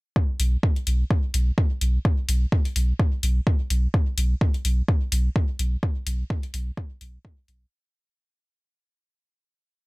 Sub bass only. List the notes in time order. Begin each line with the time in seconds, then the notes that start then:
0.40 B1
0.87 B1
1.34 B1
1.81 B1
2.29 B1
2.76 B1
3.23 B1
3.70 B1
4.18 B1
4.65 B1
5.12 B1
5.59 B1
6.07 B1
6.54 B1
7.01 B1
7.48 B1